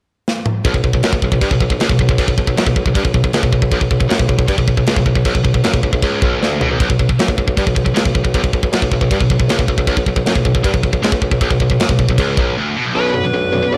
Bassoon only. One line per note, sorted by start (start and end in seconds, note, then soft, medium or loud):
0.65 0.73 B1 medium
0.74 0.83 B1 medium
0.84 0.92 B1 medium
0.93 1.02 B1 medium
1.03 1.12 F#2 medium
1.13 1.22 B1 medium
1.22 1.31 B1 medium
1.32 1.40 B1 medium
1.41 1.50 G2 loud
1.51 1.60 B1 medium
1.60 1.69 B1 medium
1.70 1.78 B1 medium
1.78 1.88 C#2 medium
1.90 1.98 B1 medium
1.99 2.08 B1 medium
2.09 2.18 B1 medium
2.18 2.27 B1 medium
2.28 2.37 B1 medium
2.37 2.46 B1 medium
2.47 2.56 B1 medium
2.57 2.66 F#2 medium
2.66 2.75 B1 medium
2.76 2.85 B1 medium
2.86 2.95 B1 medium
2.95 3.04 G2 loud
3.04 3.13 B1 medium
3.14 3.23 B1 medium
3.24 3.33 B1 medium
3.33 3.42 C#2 medium
3.43 3.52 B1 medium
3.52 3.61 B1 medium
3.62 3.71 B1 medium
3.71 3.80 B1 loud
3.81 3.90 B1 medium
3.91 4.00 B1 medium
4.01 4.08 B1 medium
4.09 4.19 F#2 medium
4.20 4.28 B1 medium
4.29 4.38 B1 medium
4.38 4.48 B1 medium
4.48 4.57 G2 loud
4.58 4.67 B1 medium
4.67 4.76 B1 medium
4.77 4.86 B1 medium
4.87 4.96 C#2 medium
4.96 5.05 B1 medium
5.06 5.15 B1 medium
5.16 5.25 B1 medium
5.25 5.34 B1 medium
5.35 5.44 B1 medium
5.44 5.54 B1 medium
5.54 5.62 B1 medium
5.63 5.72 F#2 medium
5.74 5.82 B1 medium
5.83 5.92 B1 medium
5.93 6.02 B1 medium
6.02 6.20 C#2 medium
6.22 6.40 B1 medium
6.41 6.59 D2 medium
6.60 6.69 B1 medium
6.70 6.79 B1 medium
6.80 6.89 B1 medium
6.90 6.99 B1 medium
6.99 7.08 B1 medium
7.18 7.27 F#2 medium
7.28 7.37 B1 medium
7.37 7.46 B1 medium
7.47 7.56 B1 medium
7.57 7.66 G2 loud
7.67 7.75 B1 medium
7.76 7.85 B1 medium
7.86 7.94 B1 medium
7.95 8.04 C#2 medium
8.05 8.14 B1 medium
8.15 8.23 B1 medium
8.24 8.33 B1 medium
8.34 8.43 B1 medium
8.43 8.52 B1 medium
8.53 8.62 B1 medium
8.63 8.71 B1 medium
8.71 8.81 F#2 medium
8.82 8.91 B1 medium
8.92 9.00 B1 medium
9.01 9.10 B1 medium
9.11 9.19 G2 loud
9.21 9.29 B1 medium
9.30 9.39 B1 medium
9.39 9.47 B1 medium
9.47 9.57 C#2 medium
9.59 9.67 B1 medium
9.68 9.77 B1 medium
9.78 9.87 B1 medium
9.87 9.96 B1 medium
9.97 10.06 B1 medium
10.07 10.15 B1 medium
10.16 10.24 B1 medium
10.25 10.34 F#2 medium
10.35 10.44 B1 medium
10.45 10.54 B1 medium
10.54 10.63 B1 medium
10.64 10.73 G2 loud
10.74 10.83 B1 medium
10.84 10.92 B1 medium
10.93 11.02 B1 medium
11.03 11.11 C#2 medium
11.12 11.21 B1 medium
11.22 11.31 B1 medium
11.31 11.40 B1 medium
11.41 11.50 B1 medium
11.50 11.59 B1 medium
11.60 11.69 B1 medium
11.70 11.78 B1 medium
11.79 11.88 F#2 medium
11.89 11.98 B1 medium
11.99 12.08 B1 medium
12.09 12.17 B1 medium
12.18 12.36 C#2 loud
12.37 12.55 B1 medium
12.95 13.09 B1 medium
13.13 13.27 B1 medium
13.33 13.47 B1 medium
13.52 13.66 B1 loud
13.71 13.77 B1 loud